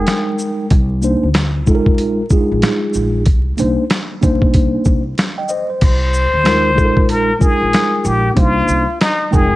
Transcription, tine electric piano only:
0.00 0.68 G#3 medium
0.00 0.65 D#4 medium
0.00 0.66 A#4 medium
0.00 0.66 G5 medium
1.02 1.27 A#3 medium
1.02 1.27 D4 medium
1.02 1.28 D#4 medium
1.02 1.28 C5 medium
1.66 2.21 G#3 medium
1.66 2.21 D#4 medium
1.66 2.21 F4 medium
1.66 1.76 A4 medium
1.75 2.25 A#4 medium
2.30 3.21 G#3 medium
2.30 2.39 D4 medium
2.30 3.22 F4 medium
2.30 3.22 G#4 medium
2.37 3.25 D#4 medium
3.57 3.82 A#3 medium
3.57 3.83 D4 medium
3.57 3.83 D#4 medium
3.57 3.84 C5 medium
4.21 5.01 A#3 medium
4.21 5.01 D4 medium
4.21 5.02 D#4 medium
4.21 5.02 C5 medium
5.38 5.48 D#5 medium
5.38 5.49 G5 medium
5.49 5.69 C5 medium
5.49 5.68 D#5 medium
5.70 6.00 C5 medium
6.44 6.69 G#3 medium
6.44 6.70 D#4 medium
6.44 6.70 F4 medium
6.44 6.70 A#4 medium
6.75 7.30 G#3 medium
6.75 7.31 D#4 medium
6.75 7.31 F4 medium
6.75 6.85 A4 medium
6.84 7.35 A#4 medium
7.39 8.31 G#3 medium
7.39 7.48 D4 soft
7.39 8.32 F4 medium
7.39 8.32 A#4 medium
7.46 8.34 D#4 medium
8.35 8.84 A#3 medium
8.35 8.84 D4 medium
8.35 8.84 D#4 medium
8.35 8.85 C5 medium
9.31 9.56 G#3 medium
9.31 9.56 D#4 medium
9.31 9.56 A#4 medium
9.31 9.56 G5 medium

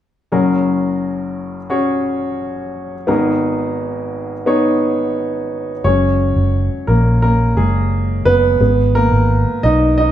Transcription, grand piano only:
0.32 3.04 F#1 medium
0.32 3.04 F#2 soft
0.32 1.56 C#4 medium
0.32 1.57 F#4 medium
0.32 1.56 G#4 medium
0.32 1.57 A#4 medium
1.70 2.94 C#4 medium
1.70 2.94 F#4 medium
1.70 2.95 G#4 medium
1.70 2.95 C#5 medium
3.07 5.80 G#1 medium
3.07 5.80 G#2 medium
3.07 4.32 B3 medium
3.07 4.32 D#4 medium
3.07 4.32 G#4 medium
3.07 4.33 A#4 medium
4.46 5.71 B3 medium
4.46 5.71 D#4 medium
4.46 5.71 G#4 medium
4.46 5.71 C#5 medium
5.84 8.57 F#3 soft
5.84 7.57 G#3 soft
5.84 6.85 C#4 medium
5.84 6.91 C#5 medium
6.87 7.21 A#3 medium
6.87 7.21 A#4 medium
7.22 7.55 A#3 medium
7.22 7.58 A#4 medium
7.57 8.23 G#3 medium
7.57 8.28 G#4 medium
8.25 8.60 B3 medium
8.25 8.97 B4 medium
8.60 9.60 G#3 soft
8.60 9.60 B3 medium
8.95 9.61 A#3 medium
8.95 9.66 A#4 medium
9.63 9.97 D#4 medium
9.63 9.96 D#5 medium
9.98 10.12 D#4 medium
9.98 10.12 D#5 medium

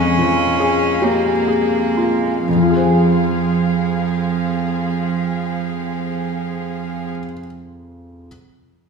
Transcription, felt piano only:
0.00 2.43 F2 soft
0.18 0.85 F3 soft
0.60 1.30 G#4 soft
1.02 1.48 G4 soft
1.48 2.27 G#4 soft
1.97 2.47 F4 soft
2.49 7.11 F2 soft
2.56 7.19 F3 soft
2.63 7.25 F4 soft
2.70 7.33 G#4 soft
2.76 7.39 C5 soft
2.84 7.46 G#5 soft

